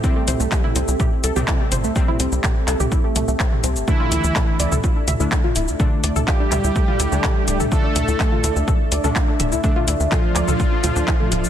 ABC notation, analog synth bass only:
X:1
M:4/4
L:1/16
Q:1/4=125
K:Ddor
V:1 name="Analog synth bass" clef=bass
z2 C,, C,, z2 C,, C,, z2 C,, C,, z2 G,,, C,, | z2 C,, C,, z2 C,, C,, z2 C,, C,, z2 C,, G,,, | z2 D,, D,, z2 D,, D,, z2 D,, D,, z2 D,,, D,, | z2 D,, D,, z2 D,, D,, z2 D,, D,, z2 D,,, D,, |
z2 D,, D,, z2 D,, D,, z2 D,, D,, z2 D,,, D,, | z2 D,, D,, z2 D,, D,, z2 D,, D,, z2 D,,, D,, |]